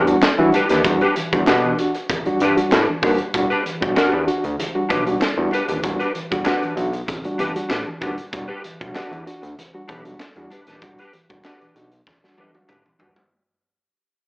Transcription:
Already playing: E2 D4
0.07 G3 D4 F#4, muted clean electric guitar stroke, closed hi-hat
0.22 muted clean electric guitar stroke, snare, clap, high conga
0.39 E3 G3 D4 F#4, muted clean electric guitar stroke
0.52 D4 G4 B4, closed hi-hat, high conga
0.69 D#2 E3 D4 G4 B4, snare, closed hi-hat
0.84 E2 G3 D4 F#4, kick, closed hi-hat, muted conga
1.01 D4 G4 B4, closed hi-hat
1.16 E3, muted clean electric guitar stroke, closed hi-hat
1.33 E2 G3 D4 F#4, muted clean electric guitar stroke, kick, closed hi-hat
1.47 B2 D4 F#4 G4 B4, snare, clap, high conga
1.63 E3
1.78 D4 F#4, muted clean electric guitar stroke, closed hi-hat
1.95 muted clean electric guitar stroke, closed hi-hat
2.10 muted clean electric guitar stroke, kick, closed hi-hat, muted conga, low conga
2.26 G2 G3 D4 F#4, muted clean electric guitar stroke, closed hi-hat
2.39 G2 E3 D4 G4, closed hi-hat, low conga
2.44 B4
2.57 G3 D4 F#4, muted clean electric guitar stroke, closed hi-hat
2.71 A2 D4 F#4 G4 B4, snare, clap, high conga
2.89 E3, muted clean electric guitar stroke
3.02 D#2 G3 D4 F#4 G4 B4, kick, open hi-hat, high conga
3.18 muted clean electric guitar stroke, closed hi-hat
3.34 E1 G3 D4 F#4, muted clean electric guitar stroke, kick, closed hi-hat, muted conga
3.50 D4 G4 B4, closed hi-hat
3.65 E3, muted clean electric guitar stroke, closed hi-hat
3.81 B1 G3 D4 F#4, muted clean electric guitar stroke, kick, closed hi-hat
3.95 E2 C#4 D4 F#4 A#4, snare, clap, high conga
4.07 D4 G4 B4
4.13 E2 E3
4.26 D4 F#4, muted clean electric guitar stroke, closed hi-hat
4.44 D2, muted clean electric guitar stroke, closed hi-hat
4.60 closed hi-hat, muted conga, low conga
4.74 G3 D4 F#4, muted clean electric guitar stroke
4.89 B1 E3 D4 G4 B4, kick, closed hi-hat, muted conga, low conga
5.06 G3 D4 F#4, muted clean electric guitar stroke, closed hi-hat
5.20 muted clean electric guitar stroke, snare, clap, high conga
5.37 E2 G3 D4 F#4, muted clean electric guitar stroke
5.51 D4 G4 B4, closed hi-hat, high conga
5.68 D#1 E3 D4 G4 B4, closed hi-hat
5.83 E1 G3 D4 F#4, kick, closed hi-hat, muted conga
5.99 D4 G4 B4, closed hi-hat
6.13 E3, muted clean electric guitar stroke, closed hi-hat
6.31 E1 G3 D4 F#4, muted clean electric guitar stroke, kick, closed hi-hat
6.44 D4 F#4 G4 B4, snare, clap, high conga
6.62 B1 E3, closed hi-hat
6.76 B1 D4 F#4, muted clean electric guitar stroke, closed hi-hat
6.93 muted clean electric guitar stroke, closed hi-hat
7.06 muted clean electric guitar stroke, kick, closed hi-hat, muted conga, low conga
7.24 G1 G3 D4 F#4, muted clean electric guitar stroke, closed hi-hat
7.38 G1 E3 D4 G4 B4, closed hi-hat, muted conga, low conga
7.55 G3 D4 F#4, muted clean electric guitar stroke, closed hi-hat
7.69 A1 D4 F#4 G4 B4, snare, clap, high conga
7.86 E3, muted clean electric guitar stroke
8.01 D#1 G3 D4 F#4 G4 B4, kick, closed hi-hat, high conga
8.17 muted clean electric guitar stroke, closed hi-hat
8.31 E1 G3 D4 F#4, muted clean electric guitar stroke, kick, closed hi-hat, muted conga
8.48 D4 G4 B4
8.63 E3, muted clean electric guitar stroke, closed hi-hat
8.79 B1 G3 D4 F#4, muted clean electric guitar stroke, kick, closed hi-hat
8.94 E2 D4 F#4 G4 B4, snare, clap, high conga
9.11 E2 E3, closed hi-hat
9.25 D4 F#4, muted clean electric guitar stroke, closed hi-hat
9.41 D2, muted clean electric guitar stroke, closed hi-hat
9.59 closed hi-hat, muted conga, low conga
9.73 G3 D4 F#4, muted clean electric guitar stroke
9.88 B1 E3 D4 G4 B4, kick, closed hi-hat, muted conga, low conga
10.05 G3 D4 F#4, muted clean electric guitar stroke, closed hi-hat
10.19 muted clean electric guitar stroke, snare, clap, high conga
10.36 E2 G3 D4 F#4, muted clean electric guitar stroke, closed hi-hat
10.51 D4 G4 B4, closed hi-hat, high conga
10.67 D#1 E3 D4 G4 B4, snare, closed hi-hat
10.82 E1 G3 D4 F#4, kick, closed hi-hat, muted conga
10.99 D4 G4 B4, closed hi-hat
11.13 E3, muted clean electric guitar stroke, closed hi-hat
11.29 E1 G3 D4 F#4, muted clean electric guitar stroke, kick, closed hi-hat
11.44 D4 F#4 G4 B4, snare, clap, high conga
11.61 B1 E3, closed hi-hat
11.75 B1 D4 F#4, muted clean electric guitar stroke, closed hi-hat
11.92 muted clean electric guitar stroke, closed hi-hat
12.07 muted clean electric guitar stroke, kick, snare, muted conga, low conga
12.23 G1 G3 D4 F#4, muted clean electric guitar stroke, snare
12.37 G1 E3 D4 G4 B4, high tom, muted conga, low conga
12.53 G3 D4 F#4, muted clean electric guitar stroke, high tom
12.68 A1 D4 F#4 G4 B4, clap, mid tom, high conga
12.85 E3, muted clean electric guitar stroke, mid tom
12.99 D#1 G3 D4 F#4 G4 B4, floor tom, high conga
13.16 muted clean electric guitar stroke, floor tom, high conga

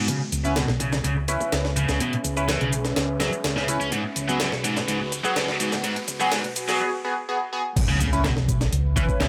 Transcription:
0.08 C#3 C#4 G#4 B4 E5, kick, closed hi-hat, riser, shaker
0.32 C#2, closed hi-hat, shaker
0.44 B3 C#4 E4 B4, shaker
0.56 B2, snare, closed hi-hat, shaker
0.68 B1, snare
0.80 C#3, kick, closed hi-hat, shaker
0.93 snare, shaker
1.04 C#2 C#3, closed hi-hat, shaker
1.28 C#4 E4 B4, kick, closed hi-hat, shaker
1.41 kick, shaker
1.52 C#2, snare, closed hi-hat, shaker
1.65 snare
1.76 C#3, closed hi-hat, shaker
1.89 C#2 C#3, snare, shaker
2.00 B2, kick, closed hi-hat, shaker
2.13 closed hi-hat
2.24 C#2, kick, closed hi-hat, shaker
2.37 C#4 E4 B4, kick, shaker
2.48 E3, snare, closed hi-hat, shaker
2.61 B1 C#3, closed hi-hat
2.73 closed hi-hat, shaker
2.85 snare, shaker
2.96 C#2, snare, closed hi-hat, shaker
3.20 F#3, snare, closed hi-hat, shaker
3.33 muted fingered electric bass stroke, shaker
3.44 C#2, snare, closed hi-hat, shaker
3.56 C#3, snare
3.68 C#4 E4 B4, kick, closed hi-hat, shaker
3.80 C#2 C#4, shaker
3.92 G#2 F#4 B4, kick, closed hi-hat, shaker
4.16 C#2, closed hi-hat, shaker
4.28 F#3 B3 F#4 G#4, shaker
4.40 F#2, snare, closed hi-hat, shaker
4.52 B1, snare
4.64 G#2, kick, closed hi-hat, shaker
4.77 snare, shaker
4.88 C#2 G#2, closed hi-hat, shaker
5.12 kick, closed hi-hat, shaker
5.24 F#3 B3 F#4 G#4, kick, shaker
5.36 C#2 F#2, snare, closed hi-hat, shaker
5.48 snare
5.60 G#2, closed hi-hat, shaker
5.72 C#2, snare, shaker
5.84 G#2, kick, closed hi-hat, shaker
5.96 closed hi-hat
6.08 C#2, kick, closed hi-hat, shaker
6.20 F#3 B3 F#4 G#4, kick, shaker
6.32 G#2, snare, closed hi-hat, shaker
6.44 B1, closed hi-hat
6.56 closed hi-hat, shaker
6.68 F#3 B3 F#4 G#4, snare, shaker
6.80 B3 F#4 G#4
7.04 B3 F#4 G#4
7.29 B3 F#4 G#4
7.53 B3 F#4 G#4
7.76 C#4 G#4 B4 E5, kick, closed hi-hat, crash, impact, shaker
7.89 C#3
8.00 C#2 C#3, closed hi-hat, shaker
8.13 C#4 E4 B4, shaker
8.24 B2, snare, clap, closed hi-hat, shaker
8.37 B1, snare
8.48 kick, closed hi-hat, shaker
8.61 snare, shaker
8.73 C#2, closed hi-hat, shaker
8.96 E3 C#4 E4 B4, kick, closed hi-hat, shaker
9.09 kick, shaker
9.20 C#2 B2, snare, clap, closed hi-hat, shaker

